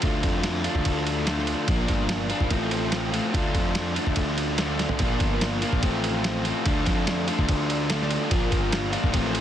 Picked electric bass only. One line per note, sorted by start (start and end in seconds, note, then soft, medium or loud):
0.03 0.20 D2 medium
0.23 0.66 F2 medium
0.75 0.84 D2 medium
0.86 1.54 D2 medium
1.68 1.89 A#1 loud
1.89 2.32 G1 medium
2.41 2.50 G#1 medium
2.51 3.19 A1 medium
3.34 3.51 D2 loud
3.54 3.97 F2 medium
4.07 4.15 D2 medium
4.17 4.85 D2 medium
5.00 5.20 A#1 loud
5.20 5.63 G1 medium
5.72 5.81 A#1 medium
5.83 6.51 A1 medium
6.66 6.83 D2 medium
6.87 7.29 F2 loud
7.39 7.47 D2 loud
7.49 8.17 D2 medium
8.31 8.52 A#1 loud
8.52 8.95 G1 medium
9.03 9.12 G#1 medium
9.15 9.41 A1 medium